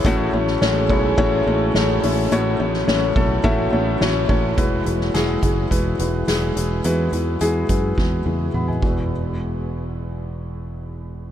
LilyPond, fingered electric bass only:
\new Staff \with { instrumentName = "Fingered electric bass" } { \clef bass \time 4/4 \key a \lydian \tempo 4 = 106 a,,8 a,,8 a,,8 b,,8 a,,8 a,,8 a,,8 a,,8 | a,,8 a,,8 a,,8 b,,8 a,,8 a,,8 a,,8 a,,8 | r8 e,,8 e,,8 fis,,8 e,,8 e,,8 e,,8 e,,8 | e,8 e,8 e,8 fis,8 e,8 e,8 e,8 e,,8~ |
e,,1 | }